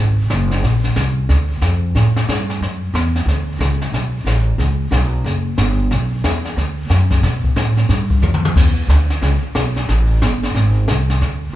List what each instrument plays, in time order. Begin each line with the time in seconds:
Already playing: upright bass G#1
0.30 upright bass F#1, snare, hi-hat pedal
0.51 snare
0.62 upright bass A#1, brush sweep, snare
0.84 snare
0.96 upright bass C2, snare, hi-hat pedal
1.29 upright bass D2, brush sweep, snare
1.61 upright bass F2, snare, hi-hat pedal
1.95 upright bass A2, brush sweep, snare
2.16 snare
2.28 upright bass G2, snare, hi-hat pedal
2.50 snare
2.61 upright bass F#2, brush sweep, snare
2.94 upright bass E2, snare, hi-hat pedal
3.16 snare
3.26 upright bass D2, brush sweep, snare
3.59 upright bass C#2, snare, hi-hat pedal
3.81 snare
3.92 upright bass B1, brush sweep, snare
4.25 upright bass A1, snare, hi-hat pedal
4.58 upright bass C#2, brush sweep, snare
4.91 upright bass B1, snare, hi-hat pedal
5.24 upright bass F#1, brush sweep, snare
5.57 upright bass G1, snare, hi-hat pedal
5.91 upright bass B1, brush sweep, snare
6.24 upright bass E2, snare, hi-hat pedal
6.45 snare
6.57 upright bass D2, brush sweep, snare
6.90 upright bass F#2, snare, hi-hat pedal
7.11 kick, snare
7.23 upright bass B2, brush sweep, snare
7.44 kick
7.56 upright bass A2, snare, hi-hat pedal
7.77 snare
7.89 upright bass G2, brush sweep, snare
8.10 kick
8.22 upright bass F2, hi-hat pedal, mid tom
8.34 mid tom
8.45 mid tom
8.56 upright bass E2, brush sweep, kick, snare, crash
8.88 upright bass D2, snare, hi-hat pedal
9.10 snare
9.21 upright bass C#2, brush sweep, snare
9.43 muted upright bass stroke
9.55 upright bass B1, snare, hi-hat pedal
9.76 snare
9.89 upright bass A1, brush sweep, snare
10.21 upright bass G1, snare, hi-hat pedal
10.43 snare
10.55 upright bass G#1, brush sweep, snare
10.87 upright bass C2, snare, hi-hat pedal
11.10 snare
11.21 upright bass D2, brush sweep, snare